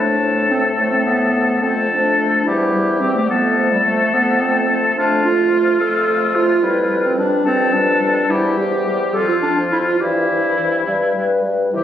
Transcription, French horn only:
0.00 0.19 A3 soft
0.20 0.48 A3 soft
0.49 0.76 A3 soft
0.77 1.04 A3 soft
1.06 1.33 A3 soft
1.34 1.61 A3 soft
1.62 1.89 A3 soft
1.90 2.17 A3 soft
2.19 2.46 A3 soft
2.46 2.73 G3 soft
2.74 3.01 G3 soft
3.02 3.29 G3 soft
3.30 3.57 A3 soft
3.59 3.86 A3 soft
3.86 4.13 A3 soft
4.15 4.41 A3 soft
4.42 4.69 A3 soft
4.69 4.96 A3 soft
4.97 5.24 A3 medium
5.25 5.52 A3 soft
5.53 5.79 A3 soft
5.80 6.07 A3 soft
6.09 6.34 A3 soft
6.35 6.62 A3 soft
6.63 6.90 G3 medium
6.90 7.16 G3 soft
7.17 7.45 G3 medium
7.46 7.73 G3 soft
7.73 8.01 G3 soft
8.02 8.29 G3 soft
8.30 8.58 G3 medium
8.59 8.86 G3 soft
8.87 9.14 G3 soft
9.15 9.43 F3 soft
9.43 9.72 F3 soft
9.73 10.01 F3 soft
10.02 10.30 E3 soft
10.30 10.58 E3 soft
10.59 10.87 E3 soft
10.87 11.16 G3 soft
11.16 11.44 G3 soft
11.45 11.73 G3 soft
11.73 11.84 E4 medium

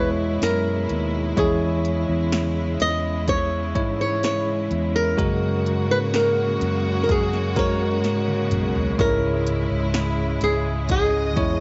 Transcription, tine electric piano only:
0.00 1.30 G#3 medium
0.00 1.30 E4 medium
0.00 1.30 C#5 medium
1.37 2.76 E3 soft
1.37 3.18 G#3 medium
1.37 3.18 E4 medium
1.37 3.19 C#5 medium
3.75 5.11 G#3 medium
3.75 5.11 E4 medium
3.75 5.11 C#5 medium
5.17 6.57 C#3 soft
5.17 6.99 G#3 medium
5.17 6.99 F#4 medium
5.17 6.99 A#4 medium
7.56 8.92 G#3 medium
7.56 8.92 F#4 medium
7.56 8.92 A#4 medium
8.98 10.38 G#2 medium
8.98 10.80 G#3 medium
8.98 10.80 E4 medium
8.98 10.80 C#5 medium
11.36 11.60 G#3 medium
11.36 11.60 E4 medium
11.36 11.60 C#5 medium

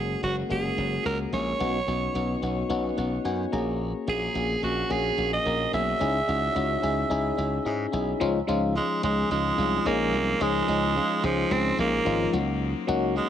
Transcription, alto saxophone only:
0.00 0.19 G#4 medium
0.24 0.36 F#4 medium
0.51 1.02 G#4 medium
1.06 1.18 A#4 loud
1.34 2.39 C#5 loud
4.09 4.60 G#4 medium
4.64 4.93 F#4 medium
4.92 5.32 G#4 medium
5.33 5.71 D#5 loud
5.74 7.62 E5 loud
8.77 9.02 G#3 medium
9.04 9.29 G#3 medium
9.31 9.88 G#3 medium
9.87 10.43 A#3 loud
10.42 11.26 G#3 loud
11.25 11.54 F3 loud
11.52 11.79 C4 loud
11.80 12.30 A#3 loud
13.17 13.29 G#3 medium

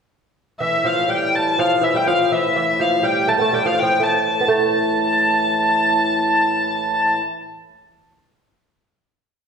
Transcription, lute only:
0.60 0.83 E3 medium
0.84 1.08 F3 medium
1.08 1.58 G3 medium
1.59 1.83 F3 medium
1.81 1.94 E3 medium
1.94 2.07 G3 medium
2.07 2.32 F3 medium
2.32 2.55 E3 medium
2.56 2.81 E3 medium
2.79 3.02 F3 medium
3.03 3.28 G3 medium
3.28 3.37 A3 medium
3.38 3.53 A3 medium
3.38 3.41 B3 medium
3.53 3.65 G3 medium
3.65 3.73 F3 medium
3.74 3.81 F3 medium
3.82 4.01 F3 medium
4.00 4.34 A3 medium
4.41 4.48 B3 medium
4.48 7.85 A3 medium

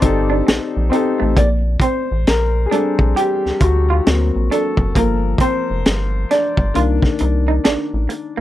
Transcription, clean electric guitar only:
0.02 muted clean electric guitar stroke soft
0.30 0.43 D4 medium
0.47 muted clean electric guitar stroke soft
0.92 1.14 C4 medium
1.20 1.33 A3 medium
1.37 1.58 A#3 medium
1.82 2.03 C4 medium
2.71 2.93 D4 medium
3.16 3.38 G4 medium
3.62 muted clean electric guitar stroke soft
3.90 4.03 F4 medium
4.51 4.73 D4 medium
4.97 5.18 A#3 medium
5.41 5.62 C4 medium
6.31 6.52 D4 medium
6.76 6.97 F4 medium
7.21 muted clean electric guitar stroke soft
7.48 7.61 D#4 medium
7.64 7.86 D4 medium
8.09 muted clean electric guitar stroke soft
8.37 8.40 A#3 medium

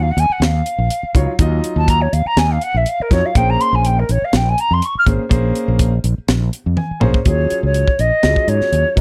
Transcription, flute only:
0.02 0.12 F5 medium
0.11 0.21 F#5 medium
0.19 0.33 G#5 loud
0.32 0.45 F#5 medium
0.43 1.40 F5 medium
1.77 1.90 A5 medium
1.89 2.03 A#5 loud
2.01 2.14 C#5 medium
2.13 2.28 F5 medium
2.26 2.40 A#5 medium
2.38 2.53 G#5 medium
2.51 2.65 F5 medium
2.63 2.78 F#5 loud
2.77 2.90 E5 medium
2.89 3.03 F5 loud
3.02 3.14 A#4 medium
3.13 3.27 C#5 medium
3.25 3.38 F5 medium
3.37 3.51 G5 loud
3.50 3.62 A#5 medium
3.61 3.76 C6 loud
3.75 3.87 G#5 medium
3.86 4.01 G5 medium
3.99 4.12 A#4 medium
4.11 4.26 C#5 medium
4.24 4.38 F5 medium
4.36 4.50 G5 medium
4.49 4.61 G#5 medium
4.60 4.75 A#5 medium
4.73 4.86 C6 medium
4.85 4.96 C#6 medium
4.98 5.04 F6 loud
7.27 7.61 C#5 medium
7.65 8.01 C#5 medium
8.00 8.50 D#5 medium
8.48 8.97 C#5 medium

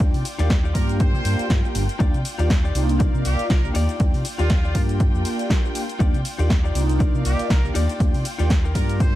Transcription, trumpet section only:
0.75 0.95 A#4 loud
1.00 1.50 C5 loud
3.25 3.45 G4 medium
3.50 3.70 A#4 loud
4.39 4.81 F4 loud
7.25 7.45 G4 medium
7.50 7.70 A#4 loud
8.75 8.95 A#4 medium
9.00 9.15 C5 medium

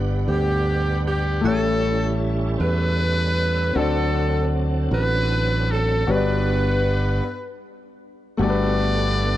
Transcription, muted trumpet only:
0.30 1.03 G4 medium
1.10 1.48 G4 medium
1.47 2.23 A4 medium
2.59 3.78 B4 loud
3.76 4.54 A4 medium
4.93 5.73 B4 medium
5.71 6.13 A4 medium
6.11 7.64 B4 medium
8.43 9.37 D5 loud

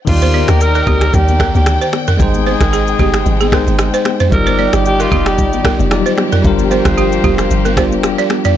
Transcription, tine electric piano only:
0.05 2.15 D#3 medium
0.05 2.15 D#4 medium
0.05 0.15 F4 soft
0.10 2.17 D5 medium
0.15 2.19 G4 medium
2.17 3.49 G#3 medium
2.17 3.49 D#4 medium
2.17 3.50 G5 medium
2.22 3.51 C5 medium
3.51 4.32 G#3 medium
3.51 4.30 D#4 medium
3.51 4.33 C5 medium
3.51 4.32 G5 medium
4.30 5.87 G3 medium
4.30 5.88 D#4 medium
4.30 5.89 F4 medium
4.35 5.90 D5 medium
5.90 5.98 F#3 medium
5.90 6.44 D#4 medium
5.90 6.44 F4 medium
5.90 6.45 D5 medium
5.97 6.41 G3 medium
6.42 7.73 G3 medium
6.42 7.74 D4 medium
6.42 7.75 F4 medium
6.47 7.76 A#4 medium
7.76 8.56 G3 medium
7.76 8.57 D4 medium
7.76 8.57 F4 medium
7.76 8.56 G4 medium

